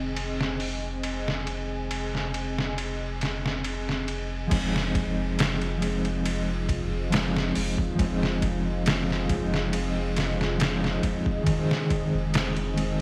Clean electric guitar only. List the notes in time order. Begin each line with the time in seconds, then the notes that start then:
Already playing: D#3 G#3 C4 D#4
4.47 F3 G#3
4.53 C4 D#4
5.78 F3 G#3
5.83 C4 D#4
7.10 F3 G#3 C4
7.14 D#4
7.95 F3 G#3
8.00 C4 D#4
9.25 F3 G#3
9.31 C4 D#4
10.58 F3 G#3 C4
10.62 D#4
11.43 D#3 G#3
11.48 C4 D#4
12.73 D#3 G#3
12.79 C4 D#4